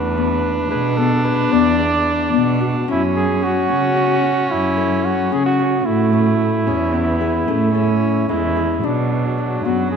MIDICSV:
0, 0, Header, 1, 5, 480
1, 0, Start_track
1, 0, Tempo, 542005
1, 2552, Time_signature, 11, 3, 24, 8
1, 8826, End_track
2, 0, Start_track
2, 0, Title_t, "Flugelhorn"
2, 0, Program_c, 0, 56
2, 0, Note_on_c, 0, 71, 92
2, 620, Note_off_c, 0, 71, 0
2, 626, Note_on_c, 0, 71, 87
2, 864, Note_on_c, 0, 69, 78
2, 877, Note_off_c, 0, 71, 0
2, 1102, Note_on_c, 0, 71, 83
2, 1116, Note_off_c, 0, 69, 0
2, 1348, Note_on_c, 0, 74, 96
2, 1361, Note_off_c, 0, 71, 0
2, 2310, Note_off_c, 0, 74, 0
2, 2570, Note_on_c, 0, 64, 94
2, 2674, Note_off_c, 0, 64, 0
2, 2799, Note_on_c, 0, 68, 92
2, 3042, Note_on_c, 0, 66, 95
2, 3055, Note_off_c, 0, 68, 0
2, 3996, Note_on_c, 0, 64, 96
2, 4009, Note_off_c, 0, 66, 0
2, 4472, Note_on_c, 0, 66, 84
2, 4485, Note_off_c, 0, 64, 0
2, 4716, Note_on_c, 0, 68, 92
2, 4729, Note_off_c, 0, 66, 0
2, 4828, Note_off_c, 0, 68, 0
2, 4833, Note_on_c, 0, 66, 87
2, 5186, Note_on_c, 0, 64, 83
2, 5199, Note_off_c, 0, 66, 0
2, 7337, Note_off_c, 0, 64, 0
2, 7343, Note_on_c, 0, 64, 86
2, 7835, Note_on_c, 0, 62, 81
2, 7848, Note_off_c, 0, 64, 0
2, 8537, Note_on_c, 0, 66, 86
2, 8550, Note_off_c, 0, 62, 0
2, 8770, Note_off_c, 0, 66, 0
2, 8776, Note_on_c, 0, 68, 80
2, 8826, Note_off_c, 0, 68, 0
2, 8826, End_track
3, 0, Start_track
3, 0, Title_t, "Harp"
3, 0, Program_c, 1, 46
3, 0, Note_on_c, 1, 57, 66
3, 0, Note_on_c, 1, 61, 70
3, 0, Note_on_c, 1, 64, 67
3, 0, Note_on_c, 1, 66, 61
3, 153, Note_on_c, 1, 59, 63
3, 390, Note_off_c, 1, 66, 0
3, 628, Note_on_c, 1, 68, 72
3, 681, Note_off_c, 1, 57, 0
3, 863, Note_off_c, 1, 59, 0
3, 867, Note_on_c, 1, 59, 63
3, 1101, Note_off_c, 1, 68, 0
3, 1104, Note_on_c, 1, 68, 71
3, 1343, Note_off_c, 1, 59, 0
3, 1346, Note_on_c, 1, 59, 78
3, 1588, Note_on_c, 1, 71, 62
3, 1985, Note_off_c, 1, 64, 0
3, 2000, Note_off_c, 1, 61, 0
3, 2062, Note_off_c, 1, 59, 0
3, 2066, Note_on_c, 1, 59, 73
3, 2308, Note_on_c, 1, 66, 69
3, 2551, Note_on_c, 1, 61, 80
3, 3023, Note_off_c, 1, 66, 0
3, 3027, Note_on_c, 1, 66, 67
3, 3118, Note_off_c, 1, 68, 0
3, 3263, Note_off_c, 1, 61, 0
3, 3267, Note_on_c, 1, 61, 75
3, 3403, Note_off_c, 1, 71, 0
3, 3505, Note_off_c, 1, 66, 0
3, 3509, Note_on_c, 1, 66, 68
3, 3744, Note_off_c, 1, 61, 0
3, 3748, Note_on_c, 1, 61, 66
3, 4223, Note_on_c, 1, 69, 66
3, 4707, Note_off_c, 1, 61, 0
3, 4710, Note_on_c, 1, 61, 73
3, 4817, Note_off_c, 1, 59, 0
3, 4946, Note_off_c, 1, 66, 0
3, 4950, Note_on_c, 1, 66, 69
3, 5423, Note_off_c, 1, 61, 0
3, 5427, Note_on_c, 1, 61, 72
3, 5908, Note_on_c, 1, 68, 75
3, 5961, Note_off_c, 1, 69, 0
3, 6137, Note_off_c, 1, 61, 0
3, 6141, Note_on_c, 1, 61, 68
3, 6379, Note_off_c, 1, 68, 0
3, 6382, Note_on_c, 1, 68, 70
3, 6619, Note_off_c, 1, 61, 0
3, 6623, Note_on_c, 1, 61, 83
3, 6857, Note_on_c, 1, 69, 65
3, 6910, Note_off_c, 1, 68, 0
3, 7108, Note_off_c, 1, 66, 0
3, 7336, Note_off_c, 1, 61, 0
3, 7339, Note_on_c, 1, 61, 81
3, 7584, Note_on_c, 1, 68, 72
3, 7637, Note_off_c, 1, 69, 0
3, 7823, Note_on_c, 1, 62, 76
3, 7876, Note_off_c, 1, 61, 0
3, 8308, Note_on_c, 1, 66, 64
3, 8546, Note_on_c, 1, 59, 66
3, 8826, Note_off_c, 1, 59, 0
3, 8826, Note_off_c, 1, 62, 0
3, 8826, Note_off_c, 1, 66, 0
3, 8826, Note_off_c, 1, 68, 0
3, 8826, End_track
4, 0, Start_track
4, 0, Title_t, "Viola"
4, 0, Program_c, 2, 41
4, 0, Note_on_c, 2, 62, 101
4, 2555, Note_on_c, 2, 61, 98
4, 2569, Note_off_c, 2, 62, 0
4, 5187, Note_on_c, 2, 57, 87
4, 5200, Note_off_c, 2, 61, 0
4, 5905, Note_on_c, 2, 61, 85
4, 5918, Note_off_c, 2, 57, 0
4, 6141, Note_on_c, 2, 59, 80
4, 6154, Note_off_c, 2, 61, 0
4, 6623, Note_on_c, 2, 57, 79
4, 6636, Note_off_c, 2, 59, 0
4, 6853, Note_off_c, 2, 57, 0
4, 6858, Note_on_c, 2, 61, 89
4, 7349, Note_on_c, 2, 56, 77
4, 7363, Note_off_c, 2, 61, 0
4, 7823, Note_off_c, 2, 56, 0
4, 7828, Note_on_c, 2, 54, 83
4, 8826, Note_off_c, 2, 54, 0
4, 8826, End_track
5, 0, Start_track
5, 0, Title_t, "Cello"
5, 0, Program_c, 3, 42
5, 0, Note_on_c, 3, 40, 91
5, 540, Note_off_c, 3, 40, 0
5, 639, Note_on_c, 3, 47, 84
5, 1262, Note_off_c, 3, 47, 0
5, 1356, Note_on_c, 3, 40, 81
5, 1980, Note_off_c, 3, 40, 0
5, 2076, Note_on_c, 3, 47, 81
5, 2491, Note_off_c, 3, 47, 0
5, 2558, Note_on_c, 3, 42, 86
5, 3181, Note_off_c, 3, 42, 0
5, 3274, Note_on_c, 3, 49, 83
5, 3899, Note_off_c, 3, 49, 0
5, 3993, Note_on_c, 3, 42, 85
5, 4618, Note_off_c, 3, 42, 0
5, 4714, Note_on_c, 3, 49, 86
5, 5130, Note_off_c, 3, 49, 0
5, 5191, Note_on_c, 3, 45, 95
5, 5817, Note_off_c, 3, 45, 0
5, 5915, Note_on_c, 3, 40, 86
5, 6539, Note_off_c, 3, 40, 0
5, 6637, Note_on_c, 3, 45, 86
5, 7260, Note_off_c, 3, 45, 0
5, 7351, Note_on_c, 3, 40, 83
5, 7768, Note_off_c, 3, 40, 0
5, 7824, Note_on_c, 3, 47, 88
5, 8453, Note_off_c, 3, 47, 0
5, 8550, Note_on_c, 3, 42, 84
5, 8826, Note_off_c, 3, 42, 0
5, 8826, End_track
0, 0, End_of_file